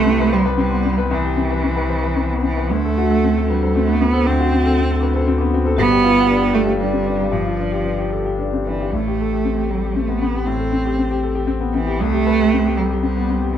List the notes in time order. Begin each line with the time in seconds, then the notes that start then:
Already playing: C2 A3 G4 B4
0.06 C4 E4
0.20 B4
0.32 G3 C4 C5
0.45 B4
0.57 G3 C4 E4
0.71 B3 C4
0.84 C4 E4
0.97 B4
1.11 C2 E3 C4
1.24 G4
1.37 C4 E4
1.50 C4 B4
1.63 C4 E4
1.76 B4
1.89 C4 C5
2.03 B4
2.16 C4 E4
2.29 B3 C4
2.43 E3 C4 E4
2.57 B4
2.70 D2 A3 D4
2.84 A4
2.97 F#4
3.09 D4 A4
3.22 C4 F#4
3.37 A4
3.48 G3 D4 B4
3.62 A4 C5
3.74 A3 C4 F#4
3.87 B3 D4
4.00 B3 C4 F#4
4.13 A4 C5
4.26 D2 C4 D4
4.38 F#4 A4
4.51 C4 F#4
4.63 D4 A4
4.75 C4 F#4
4.91 A4
5.00 D4 B4
5.13 A4 C5
5.26 C4 F#4
5.38 B3 D4
5.51 C4 F#4
5.64 A4 C5
5.76 G1 G2 B3 G4
5.89 G4 D5
6.03 F4 B4
6.14 G4
6.28 D4 B4
6.41 G4
6.53 A3 G4 A4
6.66 G4 F5
6.79 G3 D4 B4
6.92 C4 G4
7.05 D4 B4
7.18 G4 F5
7.31 G2 F3 G4
7.45 F4 D5
7.57 D4 B4
7.71 G4
7.84 D4 B4
7.98 G4
8.11 G4 A4
8.24 G4 F5
8.38 D4 B4
8.51 C4 G4
8.65 E3 D4 B4
8.79 G4 F5
8.93 A1 A2 A3
9.08 G4
9.21 A4
9.33 G4
9.45 C4
9.58 G4
9.70 G3 A4
9.84 G4
9.95 A3 C4
10.08 B3
10.21 B3 C4
10.35 G4
10.46 A2 C4
10.59 A4
10.72 C4
10.85 G4
10.99 C4
11.11 G4
11.23 A4
11.35 G4
11.47 C4
11.60 B3
11.74 E3 C4
11.87 G4
12.00 C2 A3
12.13 G4
12.26 B4
12.40 G4
12.53 C4
12.65 G4
12.77 G3 A4
12.90 G4
13.02 G3 C4
13.17 B3
13.29 C4
13.42 G4